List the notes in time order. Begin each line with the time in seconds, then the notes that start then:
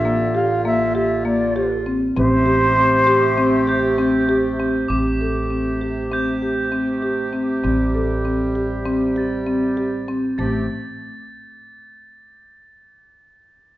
Already playing: A1 D3 A#3 F4 E5
0.05 A#3
0.35 G4 F5
0.65 A#3 E5
0.95 G4 E5
1.25 A#3 D5
1.56 G4
1.86 C4
2.17 A1 C3 A3 C4 G4 C5
2.46 G4
2.77 C4
3.07 G4
3.38 C4
3.67 G4 G6
3.98 C4
4.29 G4
4.60 C4
4.89 A1 C3 A3 C4 G4 D6
5.21 A4
5.50 C4
5.81 G4
6.12 C4 G6
6.42 G4
6.72 C4
7.02 G4
7.33 C4
7.64 A1 G3 C4
7.94 A4
8.25 C4
8.55 G4
8.85 C4
9.16 G4 A6
9.46 C4
9.77 G4
10.08 C4
10.38 A1 C3 A3 G4 A6